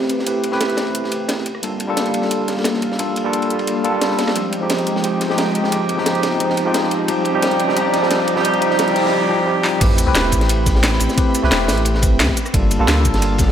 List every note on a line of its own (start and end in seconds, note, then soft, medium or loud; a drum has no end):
0.00 0.26 A3 medium
0.00 0.27 C4 medium
0.00 1.43 C4 medium
0.00 0.27 E4 medium
0.00 0.27 G4 medium
0.00 1.43 G4 medium
0.00 0.27 B4 loud
0.00 1.43 B4 medium
0.00 snare soft
0.00 riser medium
0.09 0.18 A1 medium
0.09 closed hi-hat medium
0.09 ride medium
0.19 snare soft
0.26 0.50 A3 medium
0.26 0.50 C4 medium
0.26 0.51 E4 medium
0.26 0.51 G4 medium
0.26 0.51 B4 medium
0.26 closed hi-hat medium
0.26 ride medium
0.44 closed hi-hat medium
0.44 ride medium
0.51 0.60 C2 medium
0.51 1.44 A3 medium
0.51 1.45 C4 medium
0.51 1.45 E4 medium
0.51 1.45 G4 medium
0.51 1.46 B4 loud
0.51 snare soft
0.61 0.79 E1 loud
0.61 snare loud
0.61 closed hi-hat medium
0.61 ride medium
0.70 closed hi-hat soft
0.77 1.45 A1 medium
0.77 snare loud
0.77 closed hi-hat medium
0.77 ride medium
0.87 ride soft
0.95 closed hi-hat medium
0.95 ride medium
1.04 snare soft
1.12 closed hi-hat medium
1.12 ride medium
1.29 snare loud
1.29 closed hi-hat medium
1.29 ride medium
1.38 snare soft
1.46 4.33 A#3 medium
1.46 4.33 A4 medium
1.46 4.33 F5 medium
1.46 closed hi-hat medium
1.46 ride medium
1.55 cross-stick soft
1.62 1.87 G1 loud
1.62 1.86 G3 medium
1.62 1.87 A#3 medium
1.62 1.87 D4 medium
1.62 1.87 F4 medium
1.62 1.87 A4 medium
1.62 closed hi-hat medium
1.62 ride medium
1.80 closed hi-hat medium
1.80 ride medium
1.88 1.96 A#1 loud
1.88 2.97 G3 loud
1.88 2.97 A#3 medium
1.88 2.97 D4 medium
1.88 2.98 F4 medium
1.88 2.98 A4 loud
1.97 2.16 D2 loud
1.97 snare loud
1.97 closed hi-hat medium
1.97 ride medium
2.06 closed hi-hat soft
2.06 ride soft
2.14 2.81 G1 medium
2.14 closed hi-hat medium
2.14 ride medium
2.22 snare medium
2.31 closed hi-hat medium
2.31 ride medium
2.48 snare soft
2.48 closed hi-hat medium
2.48 ride medium
2.57 snare soft
2.64 snare loud
2.64 closed hi-hat medium
2.64 ride medium
2.74 snare soft
2.82 2.90 G1 medium
2.82 closed hi-hat medium
2.82 ride medium
2.92 snare medium
2.99 3.23 G3 medium
2.99 3.23 A#3 medium
2.99 3.23 D4 medium
2.99 3.23 F4 medium
2.99 3.23 A4 medium
2.99 closed hi-hat medium
2.99 ride medium
3.16 closed hi-hat medium
3.16 ride medium
3.24 3.33 A#1 medium
3.24 3.82 G3 medium
3.24 3.83 A#3 medium
3.24 3.83 D4 medium
3.24 3.83 F4 medium
3.24 3.83 A4 loud
3.33 3.52 D2 loud
3.33 closed hi-hat medium
3.33 ride medium
3.42 closed hi-hat soft
3.42 ride medium
3.50 3.95 G1 medium
3.50 closed hi-hat medium
3.59 ride medium
3.67 closed hi-hat medium
3.67 ride medium
3.84 3.91 G3 loud
3.84 3.91 A#3 medium
3.84 3.91 D4 medium
3.84 3.91 F4 medium
3.84 3.92 A4 loud
3.84 closed hi-hat medium
3.84 ride medium
3.92 4.03 D2 medium
3.92 4.33 G3 medium
3.92 4.33 A#3 medium
3.92 4.34 D4 medium
3.92 4.34 F4 medium
3.92 4.34 A4 medium
4.01 4.10 C2 medium
4.01 snare loud
4.01 closed hi-hat medium
4.01 ride medium
4.11 snare soft
4.19 snare loud
4.19 closed hi-hat medium
4.19 ride medium
4.27 cross-stick soft
4.27 snare medium
4.27 ride medium
4.35 4.60 F1 loud
4.35 4.59 F3 medium
4.35 4.59 G#3 medium
4.35 7.06 G#3 medium
4.35 4.59 C4 medium
4.35 4.60 D#4 medium
4.35 4.60 G4 medium
4.35 9.09 D#5 medium
4.35 7.06 G5 medium
4.35 closed hi-hat medium
4.35 ride medium
4.53 closed hi-hat medium
4.53 ride medium
4.61 4.69 G#1 medium
4.61 5.02 F3 medium
4.61 5.02 G#3 medium
4.61 5.03 C4 medium
4.61 5.03 D#4 medium
4.61 5.03 G4 loud
4.70 4.89 C2 loud
4.70 snare loud
4.70 closed hi-hat medium
4.70 ride loud
4.78 closed hi-hat soft
4.78 ride soft
4.86 5.54 F1 medium
4.86 closed hi-hat medium
4.86 ride medium
4.96 snare medium
5.03 5.27 F3 medium
5.03 5.28 G#3 medium
5.03 5.28 C4 medium
5.03 5.28 D#4 medium
5.03 5.28 G4 medium
5.03 closed hi-hat medium
5.03 ride medium
5.21 snare soft
5.21 closed hi-hat medium
5.21 ride medium
5.29 5.70 F3 medium
5.29 5.70 G#3 medium
5.29 5.71 C4 medium
5.29 5.71 D#4 medium
5.29 5.71 G4 loud
5.29 snare soft
5.38 snare loud
5.38 closed hi-hat medium
5.38 ride medium
5.47 snare soft
5.55 closed hi-hat medium
5.55 ride medium
5.64 snare medium
5.72 5.96 F3 medium
5.72 5.96 G#3 medium
5.72 5.96 C4 medium
5.72 5.96 D#4 medium
5.72 5.96 G4 medium
5.72 closed hi-hat medium
5.72 ride medium
5.89 closed hi-hat medium
5.89 ride medium
5.97 6.05 G#1 loud
5.97 6.38 F3 medium
5.97 6.39 G#3 medium
5.97 6.39 C4 medium
5.97 6.39 D#4 medium
5.97 6.40 G4 loud
5.97 snare soft
6.06 6.25 C2 loud
6.06 snare loud
6.06 closed hi-hat medium
6.06 ride medium
6.15 closed hi-hat soft
6.23 snare loud
6.23 closed hi-hat medium
6.23 ride medium
6.32 ride soft
6.40 6.64 F3 medium
6.40 6.64 G#3 medium
6.40 6.64 C4 medium
6.40 6.64 D#4 medium
6.40 6.64 G4 medium
6.40 closed hi-hat medium
6.40 ride medium
6.50 snare soft
6.57 closed hi-hat medium
6.57 ride medium
6.65 7.07 F3 medium
6.65 7.07 G#3 medium
6.65 7.07 C4 medium
6.65 7.07 D#4 medium
6.65 7.08 G4 loud
6.74 snare loud
6.74 closed hi-hat medium
6.74 ride medium
6.83 snare soft
6.91 closed hi-hat medium
6.91 ride medium
7.08 7.33 C2 loud
7.08 7.32 F3 medium
7.08 7.32 G3 medium
7.08 7.32 C4 medium
7.08 7.32 D#4 medium
7.08 7.33 G4 medium
7.08 9.11 D5 medium
7.08 9.11 A#5 medium
7.08 closed hi-hat medium
7.08 ride loud
7.25 closed hi-hat medium
7.25 ride medium
7.33 7.42 D#2 loud
7.33 7.41 F3 loud
7.33 7.41 G3 medium
7.33 7.41 C4 medium
7.33 7.42 D#4 medium
7.33 7.42 G4 loud
7.42 7.61 G1 loud
7.42 7.66 F3 medium
7.42 7.66 G3 medium
7.42 7.66 C4 medium
7.42 7.66 D#4 medium
7.42 7.67 G4 medium
7.42 snare loud
7.42 closed hi-hat loud
7.42 ride loud
7.51 closed hi-hat soft
7.51 ride soft
7.59 8.26 C2 medium
7.59 closed hi-hat medium
7.59 ride medium
7.67 7.75 F3 loud
7.67 7.75 G3 medium
7.67 7.75 C4 medium
7.67 7.76 D#4 medium
7.67 7.76 G4 loud
7.67 snare medium
7.76 8.00 F3 medium
7.76 8.00 G3 medium
7.76 8.00 C4 medium
7.76 8.01 D#4 medium
7.76 8.01 G4 medium
7.76 closed hi-hat medium
7.76 ride medium
7.94 snare soft
7.94 closed hi-hat medium
7.94 ride medium
8.01 8.09 F3 loud
8.01 8.09 G3 medium
8.01 8.10 C4 medium
8.01 8.10 D#4 medium
8.01 8.10 G4 loud
8.01 snare medium
8.10 8.34 F3 medium
8.10 8.34 G3 medium
8.10 8.34 C4 medium
8.10 8.35 D#4 medium
8.10 8.35 G4 medium
8.10 snare loud
8.10 closed hi-hat loud
8.10 ride medium
8.20 snare soft
8.28 closed hi-hat medium
8.28 ride medium
8.35 8.43 F3 loud
8.35 8.43 G3 medium
8.35 8.43 C4 medium
8.35 8.44 D#4 medium
8.35 8.44 G4 loud
8.35 snare medium
8.44 8.60 F3 medium
8.44 8.60 G3 medium
8.44 8.61 C4 medium
8.44 8.61 D#4 medium
8.44 8.61 G4 medium
8.44 closed hi-hat loud
8.44 ride loud
8.44 noise sweep medium
8.54 closed hi-hat soft
8.61 8.77 F3 medium
8.61 8.77 G3 medium
8.61 8.77 C4 medium
8.61 8.78 D#4 medium
8.61 8.78 G4 medium
8.61 closed hi-hat medium
8.61 ride medium
8.70 8.78 D#2 medium
8.70 snare soft
8.78 8.97 G1 loud
8.78 8.94 F3 medium
8.78 8.94 G3 medium
8.78 8.95 C4 medium
8.78 8.95 D#4 medium
8.78 8.95 G4 medium
8.78 snare loud
8.78 closed hi-hat loud
8.78 ride medium
8.88 closed hi-hat soft
8.95 9.11 F3 medium
8.95 9.12 G3 medium
8.95 9.12 C4 medium
8.95 9.12 D#4 medium
8.95 9.12 G4 medium
8.95 closed hi-hat medium
8.95 open hi-hat medium
9.05 snare medium
9.12 9.28 F3 medium
9.12 9.29 G3 medium
9.12 9.29 C4 medium
9.12 9.29 D#4 medium
9.12 9.29 G4 medium
9.29 9.45 F3 medium
9.29 9.46 G3 medium
9.29 9.46 C4 medium
9.29 9.46 D#4 medium
9.29 9.46 G4 medium
9.46 9.63 F3 medium
9.46 9.63 G3 medium
9.46 9.63 C4 medium
9.46 9.63 D#4 medium
9.46 9.63 G4 medium
9.64 9.80 F3 medium
9.64 9.80 G3 medium
9.64 9.80 C4 medium
9.64 9.80 D#4 medium
9.64 9.80 G4 medium
9.64 snare medium
9.81 10.06 A1 loud
9.81 10.05 A3 medium
9.81 10.05 C4 medium
9.81 12.34 C4 medium
9.81 10.05 E4 medium
9.81 10.05 G4 medium
9.81 10.05 B4 medium
9.81 12.34 G5 medium
9.81 12.34 B5 medium
9.81 kick loud
9.81 closed hi-hat loud
9.81 crash loud
9.81 ride medium
9.81 sub drop medium
9.98 closed hi-hat medium
9.98 ride medium
9.98 shaker medium
10.06 10.14 C2 loud
10.06 11.15 A3 loud
10.06 11.15 C4 medium
10.06 11.16 E4 medium
10.06 11.16 G4 medium
10.06 11.16 B4 loud
10.15 10.34 E1 loud
10.15 snare loud
10.15 closed hi-hat loud
10.15 ride medium
10.24 ride soft
10.32 10.99 A1 medium
10.32 kick medium
10.32 closed hi-hat medium
10.32 ride medium
10.32 shaker medium
10.41 snare medium
10.41 closed hi-hat soft
10.49 closed hi-hat loud
10.49 ride medium
10.49 shaker soft
10.66 kick loud
10.66 snare soft
10.66 closed hi-hat medium
10.66 ride medium
10.66 shaker medium
10.75 snare medium
10.84 snare loud
10.84 closed hi-hat loud
10.84 ride medium
10.93 snare soft
10.99 11.09 A1 loud
10.99 closed hi-hat medium
10.99 ride medium
10.99 shaker medium
11.09 snare medium
11.09 shaker soft
11.17 11.41 A3 medium
11.17 11.41 C4 medium
11.17 11.41 E4 medium
11.17 11.42 G4 medium
11.17 11.42 B4 medium
11.17 kick loud
11.17 closed hi-hat medium
11.17 ride medium
11.35 closed hi-hat medium
11.35 ride medium
11.35 shaker medium
11.42 11.51 C2 loud
11.42 12.35 A3 loud
11.42 12.36 C4 medium
11.42 12.36 E4 medium
11.42 12.36 G4 medium
11.42 12.37 B4 loud
11.42 snare soft
11.51 11.70 E1 loud
11.51 snare loud
11.51 closed hi-hat medium
11.51 ride medium
11.68 12.13 A1 medium
11.68 snare loud
11.68 open hi-hat medium
11.68 ride medium
11.68 shaker medium
11.77 closed hi-hat soft
11.77 ride soft
11.85 closed hi-hat medium
11.85 ride medium
11.85 shaker soft
11.94 snare medium
12.02 kick loud
12.02 closed hi-hat medium
12.02 ride medium
12.02 shaker medium
12.12 12.21 E1 medium
12.19 12.28 D2 medium
12.19 snare loud
12.19 closed hi-hat medium
12.19 ride medium
12.28 kick medium
12.28 cross-stick soft
12.28 snare soft
12.37 13.52 A#3 medium
12.37 13.52 F5 medium
12.37 13.52 A5 loud
12.37 closed hi-hat medium
12.37 ride medium
12.37 shaker medium
12.46 cross-stick medium
12.46 shaker soft
12.53 12.78 G1 loud
12.53 12.77 G3 medium
12.53 12.78 A#3 medium
12.53 12.78 D4 medium
12.53 12.78 F4 medium
12.53 12.78 A4 medium
12.53 kick loud
12.53 closed hi-hat medium
12.53 ride medium
12.71 closed hi-hat medium
12.71 ride medium
12.71 shaker medium
12.79 12.87 A#1 loud
12.79 13.52 G3 medium
12.79 13.52 A#3 medium
12.79 13.52 D4 medium
12.79 13.52 F4 medium
12.79 13.52 A4 loud
12.87 13.07 D2 loud
12.87 snare loud
12.87 closed hi-hat medium
12.87 ride medium
12.98 ride soft
13.05 13.52 G1 medium
13.05 kick medium
13.05 closed hi-hat medium
13.05 ride medium
13.05 shaker medium
13.14 snare medium
13.14 closed hi-hat soft
13.22 closed hi-hat medium
13.22 ride medium
13.22 shaker soft
13.38 kick loud
13.38 snare soft
13.38 closed hi-hat medium
13.38 ride medium
13.38 shaker medium
13.48 snare soft